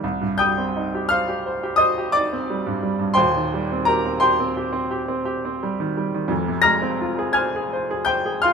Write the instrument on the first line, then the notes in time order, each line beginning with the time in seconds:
grand piano
0.04 C2
0.21 G2
0.38 G3 G5 D#6 G6
0.58 C4
0.76 D#4
0.95 G4
1.09 C5 F5 F6
1.28 G4
1.46 C5
1.63 G4
1.76 C5 D#5 D#6
1.98 G4
2.12 D#4 D5 D6
2.33 C4
2.50 G3
2.67 G2
2.83 G3
2.99 G2
3.14 D#1 D#2 C5 G5 C6
3.36 D#3
3.54 G3
3.72 C4
3.85 G4 A#4 A#5
4.05 C4
4.20 G4 C5 G5 C6
4.40 C4
4.57 G4
4.73 C4
4.91 G4
5.08 C4
5.25 G4
5.45 C4
5.63 G3
5.80 D#3
5.97 G3
6.14 D#3
6.28 F1 F2
6.48 C3
6.62 G#3 A#5 F6 A#6
6.82 C4
7.01 F4
7.19 G#4
7.33 C5 G#5 F6 G#6
7.56 G#4
7.73 C5
7.91 G#4
8.05 C5 G5 G6
8.26 G#4
8.42 F4 F5 C6 F6